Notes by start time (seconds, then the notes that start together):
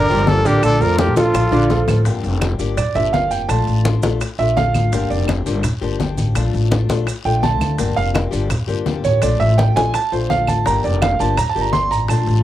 Already playing: A#4 D5
0.09 G1 F3 A#3 D4 F4 G4, high conga, maracas
0.27 F3 A#3 D4 G4 A4 D5, high bongo, low bongo, high conga, short guiro, maracas
0.45 A1 D3 D4 G4 A#4 D5, high bongo, high conga, short guiro, maracas
0.63 A#1 F3 A3 D4 F4 A4 D5, high bongo, long guiro, claves, maracas
0.80 F2 F3 F4 A4 A#4 D5, high conga, maracas
0.98 F3 A3 D4 F4 G4 A#4, high bongo, high conga, short guiro, maracas
1.07 A#1
1.16 F3 A3 D4 F4 A4, high bongo, high conga, short guiro, maracas
1.34 A#1, muted steel-string acoustic guitar stroke, high bongo, long guiro, claves, maracas
1.51 A#1 D3 A3 D4 F4 D5, high bongo, high conga, maracas
1.70 F3 A3 D4 F4 A4, low bongo, high conga, short guiro, maracas
1.88 A1, low bongo, high conga, short guiro, claves, maracas
2.05 G1 D3 F3 A#3 D4 G4, high bongo, high conga, long guiro, maracas
2.23 F1, high conga, maracas
2.41 F3 A#3 D4 G4, high bongo, high conga, short guiro, claves, maracas
2.59 G1 F3 A#3 D4 G4, high bongo, short guiro, maracas
2.77 D5, muted steel-string acoustic guitar stroke, high bongo, high conga, low conga, long guiro, claves, maracas
2.95 G1 F3 A#3 D4 G4 E5, high conga, low conga, maracas
3.13 F3 A#3 D4 G4 F5, high bongo, low bongo, high conga, short guiro, maracas
3.31 F1 G5, high bongo, short guiro, maracas
3.49 A#1 F3 A3 D4 F4 A5, high bongo, high conga, long guiro, claves, maracas
3.67 A1, high conga, maracas
3.85 F3 A3 D4 F4, high bongo, high conga, short guiro, maracas
4.02 A#1 A3 D4 F4, high conga, short guiro, maracas
4.21 muted steel-string acoustic guitar stroke, high bongo, high conga, long guiro, claves, maracas
4.38 A#1 A3 D4 F4 E5, high conga, maracas
4.57 F3 A3 D4 F4 F5, high bongo, low bongo, high conga, short guiro, maracas
4.74 A1, high bongo, high conga, short guiro, claves, maracas
4.92 G1 D3 F3 A#3 D4 G4, high bongo, long guiro, maracas
5.10 F1 D5, high conga, maracas
5.28 F3 A#3 D4 G4, high bongo, high conga, short guiro, claves, maracas
5.46 G1 F3 A#3 D4 G4, high bongo, short guiro, maracas
5.63 muted steel-string acoustic guitar stroke, high bongo, high conga, low conga, long guiro, claves, maracas
5.81 G1 F3 A#3 D4 G4, high conga, maracas
5.99 F3 A#3 D4 G4, high bongo, low bongo, high conga, short guiro, maracas
6.18 A1, high bongo, high conga, short guiro, maracas
6.35 A#1 F3 A3 D4 F4, high bongo, high conga, long guiro, claves, maracas
6.54 A1, high conga, maracas
6.71 F3 A3 D4 F4, high bongo, high conga, short guiro, maracas
6.89 A#1 A3 D4 F4, high bongo, high conga, short guiro, maracas
7.07 muted steel-string acoustic guitar stroke, high bongo, high conga, long guiro, claves, maracas
7.25 A#1 A3 D4 F4 G5, high conga, maracas
7.42 F3 A3 D4 F4 A5, high bongo, low bongo, high conga, short guiro, maracas
7.60 D2, high bongo, high conga, short guiro, claves, maracas
7.78 G1 D3 F3 A#3 D4 G4, high bongo, high conga, long guiro, maracas
7.97 F1 F5, high conga, maracas
8.14 F3 A#3 D4 G4, high bongo, high conga, short guiro, claves, maracas
8.31 G1 F3 A#3 D4 G4, high bongo, short guiro, maracas
8.50 muted steel-string acoustic guitar stroke, high bongo, high conga, low conga, long guiro, claves, maracas
8.68 G1 F3 A#3 D4 G4, high conga, maracas
8.86 F3 A#3 D4 G4, high bongo, low bongo, high conga, short guiro, maracas
9.04 A1 C#5, high bongo, high conga, short guiro, maracas
9.22 A#1 F3 A3 D4 F4 D5, high bongo, high conga, long guiro, claves, maracas
9.40 A1 E5, high conga, maracas
9.57 F3 A3 D4 F4 G5, high bongo, high conga, short guiro, maracas
9.76 A#1 A3 D4 F4 G#5, high bongo, high conga, short guiro, maracas
9.94 A5, muted steel-string acoustic guitar stroke, high bongo, high conga, long guiro, claves, maracas
10.12 A#1 A3 D4 F4 C5, high conga, maracas
10.29 F3 A3 D4 F4 F5, high bongo, low bongo, high conga, short guiro, maracas
10.47 A1 A5, high bongo, high conga, short guiro, claves, maracas
10.65 G1 D3 F3 A#3 D4 G4 A#5, high bongo, long guiro, maracas
10.84 F1 D5, high conga, maracas
11.01 F3 A#3 D4 G4 F5, high bongo, high conga, short guiro, claves, maracas
11.19 G1 F3 A#3 D4 G4 A5, high bongo, short guiro, maracas
11.37 A#5, muted steel-string acoustic guitar stroke, high bongo, high conga, low conga, long guiro, claves, maracas
11.49 A5
11.55 G1 F3 A#3 D4 G4, high conga, maracas
11.61 A#5
11.73 F3 A#3 D4 G4 C6, high bongo, low bongo, high conga, short guiro, maracas
11.91 A1 A#5, high bongo, short guiro, maracas
12.08 A#1 F3 A3 D4 F4 A5, high bongo, high conga, long guiro, claves, maracas
12.27 A1, high conga, maracas